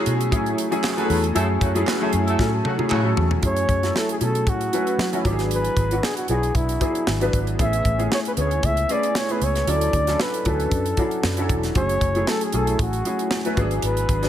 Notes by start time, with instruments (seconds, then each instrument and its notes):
Already playing: grand piano F#3 A3 C#4 E4 G#4
0.06 fingered electric bass B2, closed hi-hat
0.21 closed hi-hat
0.31 fingered electric bass A2, grand piano F#3 A3 C#4 E4 G#4, kick, closed hi-hat
0.46 closed hi-hat
0.58 closed hi-hat
0.71 grand piano F#3 A3 C#4 E4 G#4, closed hi-hat
0.84 snare, clap
0.97 grand piano F#3 A3 C#4 E4 A4, horn section B3 G#4 B4, closed hi-hat
1.10 fingered electric bass E2, open hi-hat
1.24 closed hi-hat
1.35 fingered electric bass F#2, grand piano F#3 A3 C#4 E4 G#4, horn section F#3 A3 E4 A4, closed hi-hat
1.61 fingered electric bass F#2, horn section C#3 F#3 A3 F#4, kick, closed hi-hat
1.74 grand piano F#3 A3 C#4 E4 G#4, closed hi-hat
1.86 horn section B3 G#4 B4, snare, clap
2.00 horn section F#3 A3 E4 A4, grand piano F#3 A3 C#4 E4 G#4
2.13 fingered electric bass F#2, closed hi-hat
2.27 horn section F#3 A3 E4 A4, closed hi-hat
2.39 fingered electric bass A2, grand piano F#3 A3 C#4 E4 A4, kick, snare
2.64 horn section C#3 F#3 A3 F#4, high tom
2.78 grand piano F#3 A3 C#4 E4 G#4, high tom
2.90 fingered electric bass A2, horn section C#3 F#3 A3 F#4, clap, mid tom
3.04 grand piano F#3 A3 C#4 E4 A4
3.17 fingered electric bass E2, floor tom
3.31 floor tom
3.42 fingered electric bass F#2, grand piano F#3 A3 C#4 E4 G#4, kick, closed hi-hat
3.46 flugelhorn C#5
3.56 closed hi-hat
3.69 fingered electric bass F#2, kick, closed hi-hat
3.83 grand piano F#3 A3 C#4 E4 A4, snare, closed hi-hat
3.96 flugelhorn A4, snare
4.09 flugelhorn G#4, closed hi-hat
4.21 fingered electric bass B2, grand piano F#3 A3 C#4 E4 G#4, flugelhorn A4, closed hi-hat
4.35 closed hi-hat
4.47 fingered electric bass A2, flugelhorn F#4, kick, closed hi-hat
4.61 closed hi-hat
4.73 grand piano F#3 A3 C#4 E4 B4, closed hi-hat
4.87 closed hi-hat
4.98 fingered electric bass F#3, snare
5.13 grand piano F#3 A3 C#4 E4 F#4, closed hi-hat
5.25 fingered electric bass G#1, grand piano F#3 B3 D4 E4 G4, kick, closed hi-hat
5.32 grand piano G#4
5.39 snare, closed hi-hat
5.51 closed hi-hat
5.55 flugelhorn B4
5.65 closed hi-hat
5.77 fingered electric bass G#1, kick, closed hi-hat
5.91 grand piano F#3 B3 D4 E4 F#4, closed hi-hat
6.03 flugelhorn G#4, snare
6.17 flugelhorn F#4, closed hi-hat
6.28 fingered electric bass B1, grand piano F#3 B3 D4 E4 F#4, flugelhorn G#4, closed hi-hat
6.43 closed hi-hat
6.55 fingered electric bass B1, flugelhorn E4, kick, closed hi-hat
6.69 closed hi-hat
6.80 grand piano F#3 B3 D4 E4 G#4, kick, closed hi-hat
6.95 closed hi-hat
7.07 fingered electric bass G#1, snare
7.21 grand piano F#3 B3 D4 E4 B4, closed hi-hat
7.33 fingered electric bass G#1, kick, closed hi-hat
7.47 closed hi-hat
7.59 fingered electric bass A1, grand piano A3 B3 C#4 E4 G#4, flugelhorn E5, kick, closed hi-hat
7.73 closed hi-hat
7.85 fingered electric bass A1, kick, closed hi-hat
7.98 grand piano A3 B3 C#4 E4 G#4, closed hi-hat
8.12 flugelhorn C#5, snare
8.25 flugelhorn B4, closed hi-hat
8.37 fingered electric bass D2, grand piano A3 B3 C#4 E4 G#4, flugelhorn C#5, closed hi-hat
8.51 closed hi-hat
8.63 fingered electric bass C#2, flugelhorn E5, kick, closed hi-hat
8.77 closed hi-hat
8.89 grand piano A3 B3 C#4 E4 G#4, flugelhorn D5, closed hi-hat
9.03 closed hi-hat
9.15 flugelhorn C#5, snare
9.29 grand piano A3 B3 C#4 E4 G#4, flugelhorn B4, closed hi-hat
9.41 fingered electric bass C#2, flugelhorn C#5, closed hi-hat
9.55 snare, closed hi-hat
9.67 fingered electric bass D2, grand piano F#3 C#4 D4 E4 A4, flugelhorn D5, closed hi-hat
9.81 closed hi-hat
9.93 fingered electric bass D2, kick, closed hi-hat
10.07 grand piano F#3 C#4 D4 E4 A4, snare, closed hi-hat
10.20 flugelhorn B4, snare
10.34 closed hi-hat
10.45 fingered electric bass D2, grand piano F#3 C#4 D4 E4 B4, flugelhorn A4, kick, closed hi-hat
10.60 closed hi-hat
10.71 fingered electric bass F#2, kick, closed hi-hat
10.86 closed hi-hat
10.97 grand piano F#3 C#4 D4 E4 F#4, kick, closed hi-hat
11.11 closed hi-hat
11.23 fingered electric bass F#2, snare
11.37 grand piano F#3 C#4 D4 E4 A4, closed hi-hat
11.49 fingered electric bass E1, kick, closed hi-hat
11.63 snare, closed hi-hat
11.75 fingered electric bass F#1, grand piano F#3 A3 C#4 E4 G#4, flugelhorn C#5, kick, closed hi-hat
11.89 closed hi-hat
12.01 fingered electric bass F#1, kick, closed hi-hat
12.15 grand piano F#3 A3 C#4 E4 G#4, closed hi-hat
12.27 flugelhorn A4, snare
12.41 flugelhorn G#4, closed hi-hat
12.53 fingered electric bass B1, grand piano F#3 A3 C#4 E4 G#4, flugelhorn A4, closed hi-hat
12.67 closed hi-hat
12.79 fingered electric bass A1, flugelhorn F#4, kick, closed hi-hat
12.93 closed hi-hat
13.05 grand piano F#3 A3 C#4 E4 G#4, closed hi-hat
13.19 closed hi-hat
13.31 snare
13.45 grand piano F#3 A3 C#4 E4 B4, closed hi-hat
13.57 fingered electric bass G#1, grand piano F#3 B3 D4 E4 G#4, kick, closed hi-hat
13.71 closed hi-hat
13.82 fingered electric bass G#1, flugelhorn B4, closed hi-hat
13.97 closed hi-hat
14.09 fingered electric bass G#1, kick, closed hi-hat
14.22 grand piano F#3 B3 D4 E4 G#4, snare, closed hi-hat